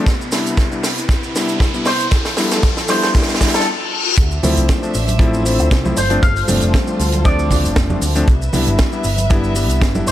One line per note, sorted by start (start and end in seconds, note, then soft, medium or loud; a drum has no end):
0.00 riser medium
0.06 2.10 C3 medium
0.06 2.10 B3 medium
0.06 3.63 E4 medium
0.06 kick loud
0.06 snare medium
0.06 closed hi-hat medium
0.06 shaker medium
0.21 shaker soft
0.32 0.68 G3 medium
0.32 0.69 B3 medium
0.32 0.69 D4 medium
0.32 0.69 E4 medium
0.32 snare medium
0.32 open hi-hat loud
0.32 shaker medium
0.46 closed hi-hat medium
0.46 shaker soft
0.57 kick loud
0.57 snare medium
0.57 closed hi-hat medium
0.57 shaker medium
0.71 0.84 G3 medium
0.71 0.84 B3 medium
0.71 0.85 D4 medium
0.71 0.85 E4 medium
0.71 shaker soft
0.83 snare medium
0.83 open hi-hat loud
0.83 shaker medium
0.98 closed hi-hat medium
0.98 shaker medium
1.09 kick loud
1.09 snare medium
1.09 closed hi-hat medium
1.09 shaker medium
1.23 shaker soft
1.35 1.71 G3 medium
1.35 1.71 B3 medium
1.35 1.72 D4 medium
1.35 1.72 E4 medium
1.35 snare medium
1.35 open hi-hat loud
1.35 shaker medium
1.48 closed hi-hat medium
1.48 shaker soft
1.60 kick loud
1.60 snare loud
1.60 closed hi-hat medium
1.60 shaker medium
1.74 1.87 G3 medium
1.74 1.87 B3 medium
1.74 1.87 D4 medium
1.74 1.88 E4 medium
1.74 shaker soft
1.85 2.06 C5 medium
1.85 snare medium
1.85 open hi-hat loud
1.85 shaker medium
1.99 closed hi-hat medium
1.99 shaker soft
2.11 3.64 F3 medium
2.11 3.64 A4 medium
2.11 kick loud
2.11 snare medium
2.11 closed hi-hat medium
2.11 shaker medium
2.25 snare medium
2.25 open hi-hat medium
2.25 shaker soft
2.37 2.61 G3 medium
2.37 2.62 B3 medium
2.37 2.62 D4 medium
2.37 2.62 E4 medium
2.37 snare loud
2.37 open hi-hat loud
2.37 shaker medium
2.51 snare medium
2.51 closed hi-hat medium
2.51 shaker medium
2.63 kick loud
2.63 snare loud
2.63 closed hi-hat medium
2.63 shaker medium
2.77 snare medium
2.77 shaker soft
2.88 3.13 G3 medium
2.88 3.13 B3 medium
2.88 3.13 D4 medium
2.88 3.13 E4 medium
2.88 3.09 C5 medium
2.88 snare medium
2.88 open hi-hat loud
2.88 shaker medium
3.02 snare medium
3.02 closed hi-hat medium
3.02 shaker soft
3.14 3.38 G3 medium
3.14 3.39 B3 medium
3.14 3.39 D4 medium
3.14 3.39 E4 medium
3.14 kick loud
3.14 snare medium
3.14 closed hi-hat medium
3.14 reverse cymbal medium
3.14 shaker medium
3.22 snare medium
3.29 snare medium
3.29 shaker soft
3.34 snare loud
3.40 3.64 G3 medium
3.40 3.64 B3 medium
3.40 3.64 D4 medium
3.40 3.64 E4 loud
3.40 kick medium
3.40 snare loud
3.40 open hi-hat loud
3.40 shaker medium
3.47 snare medium
3.54 3.66 A4 medium
3.54 snare medium
3.54 closed hi-hat medium
3.54 shaker soft
3.60 snare medium
4.17 4.37 D2 loud
4.17 5.95 D4 medium
4.17 8.24 C5 medium
4.17 5.95 E5 medium
4.17 kick loud
4.17 closed hi-hat medium
4.17 shaker medium
4.31 shaker soft
4.43 4.54 D2 medium
4.43 4.79 F3 medium
4.43 4.79 A3 medium
4.43 4.79 C4 medium
4.43 4.80 E4 medium
4.43 open hi-hat loud
4.43 high conga medium
4.43 low conga loud
4.43 shaker medium
4.57 4.66 C2 loud
4.57 closed hi-hat medium
4.57 shaker medium
4.68 kick loud
4.68 snare loud
4.68 closed hi-hat medium
4.68 shaker medium
4.82 4.95 F3 medium
4.82 4.95 A3 medium
4.82 4.95 C4 medium
4.82 4.95 D4 medium
4.82 shaker soft
4.94 5.59 A1 medium
4.94 open hi-hat loud
4.94 shaker medium
5.08 closed hi-hat medium
5.08 high conga medium
5.08 shaker soft
5.19 5.42 F3 loud
5.19 5.43 A3 medium
5.19 5.43 C4 medium
5.19 5.43 E4 loud
5.19 kick loud
5.19 closed hi-hat medium
5.19 shaker medium
5.34 shaker soft
5.45 5.81 F3 medium
5.45 5.81 A3 medium
5.45 5.82 C4 medium
5.45 5.82 E4 medium
5.45 open hi-hat loud
5.45 shaker medium
5.59 5.68 D2 loud
5.59 closed hi-hat medium
5.59 shaker soft
5.71 5.91 C2 loud
5.71 kick loud
5.71 snare loud
5.71 closed hi-hat medium
5.71 shaker medium
5.84 5.95 F3 medium
5.84 5.95 A3 medium
5.84 5.96 C4 medium
5.84 5.96 E4 medium
5.84 high conga loud
5.84 shaker soft
5.96 6.17 G1 medium
5.96 8.26 G3 medium
5.96 8.25 F4 medium
5.96 8.25 A4 medium
5.96 6.17 C5 medium
5.96 open hi-hat loud
5.96 shaker loud
6.10 6.23 F3 medium
6.10 6.23 A3 medium
6.10 6.23 C4 medium
6.10 6.23 D4 loud
6.10 closed hi-hat medium
6.10 shaker medium
6.23 6.43 G1 loud
6.23 6.43 F5 medium
6.23 kick loud
6.23 closed hi-hat medium
6.23 shaker medium
6.36 open hi-hat medium
6.36 shaker soft
6.48 6.59 G1 medium
6.48 6.84 F3 medium
6.48 6.84 A3 medium
6.48 6.84 C4 medium
6.48 6.85 D4 medium
6.48 open hi-hat loud
6.48 high conga loud
6.48 low conga medium
6.48 shaker medium
6.61 6.71 F1 loud
6.61 closed hi-hat medium
6.61 shaker soft
6.74 kick loud
6.74 snare loud
6.74 closed hi-hat medium
6.74 shaker medium
6.86 7.00 F3 medium
6.86 7.00 A3 medium
6.86 7.00 C4 medium
6.86 7.00 D4 medium
6.86 shaker soft
6.99 7.66 D2 medium
6.99 open hi-hat loud
6.99 shaker medium
7.12 closed hi-hat medium
7.12 high conga medium
7.12 shaker soft
7.24 7.48 F3 loud
7.24 7.48 A3 medium
7.24 7.48 C4 medium
7.24 7.48 D4 loud
7.24 7.97 D5 loud
7.24 kick loud
7.24 closed hi-hat medium
7.24 shaker medium
7.39 shaker soft
7.50 7.87 F3 medium
7.50 7.87 A3 medium
7.50 7.87 C4 medium
7.50 7.87 D4 medium
7.50 kick medium
7.50 open hi-hat loud
7.50 low conga loud
7.50 shaker medium
7.64 7.74 G1 loud
7.64 closed hi-hat medium
7.64 shaker soft
7.76 7.96 F1 loud
7.76 kick loud
7.76 snare loud
7.76 closed hi-hat medium
7.76 shaker medium
7.89 8.02 F3 medium
7.89 8.03 A3 medium
7.89 8.03 C4 medium
7.89 8.03 D4 medium
7.89 high conga loud
7.89 low conga medium
7.89 shaker soft
8.01 8.22 D2 medium
8.01 open hi-hat loud
8.01 shaker medium
8.15 8.26 F3 medium
8.15 8.26 A3 medium
8.15 8.26 C4 medium
8.15 8.26 D4 loud
8.15 closed hi-hat medium
8.15 shaker soft
8.28 8.48 C2 loud
8.28 10.12 B4 medium
8.28 10.12 E5 medium
8.28 kick loud
8.28 closed hi-hat medium
8.28 shaker medium
8.42 shaker soft
8.53 8.64 C2 medium
8.53 8.89 G3 medium
8.53 8.90 B3 medium
8.53 8.90 D4 medium
8.53 8.90 E4 medium
8.53 open hi-hat loud
8.53 high conga loud
8.53 low conga medium
8.53 shaker medium
8.66 8.76 G1 loud
8.66 closed hi-hat medium
8.66 shaker medium
8.78 kick loud
8.78 snare loud
8.78 closed hi-hat medium
8.78 shaker medium
8.92 9.05 G3 medium
8.92 9.05 B3 medium
8.92 9.06 D4 medium
8.92 9.06 E4 medium
8.92 shaker soft
9.04 9.69 G1 medium
9.04 open hi-hat loud
9.04 shaker medium
9.18 closed hi-hat medium
9.18 high conga medium
9.18 shaker medium
9.30 9.53 G3 loud
9.30 9.53 B3 medium
9.30 9.53 D4 medium
9.30 9.53 E4 loud
9.30 kick loud
9.30 closed hi-hat medium
9.30 shaker medium
9.44 shaker soft
9.55 9.92 G3 medium
9.55 9.92 B3 medium
9.55 9.92 D4 medium
9.55 9.92 E4 medium
9.55 open hi-hat loud
9.55 shaker medium
9.69 9.79 C2 loud
9.69 closed hi-hat medium
9.69 shaker soft
9.81 10.01 G1 loud
9.81 kick loud
9.81 snare loud
9.81 closed hi-hat medium
9.81 shaker medium
9.95 10.08 G3 medium
9.95 10.08 B3 medium
9.95 10.08 D4 medium
9.95 10.08 E4 medium
9.95 high conga medium
9.95 shaker soft
10.07 10.12 G1 medium
10.07 10.12 C5 medium
10.07 open hi-hat loud
10.07 shaker medium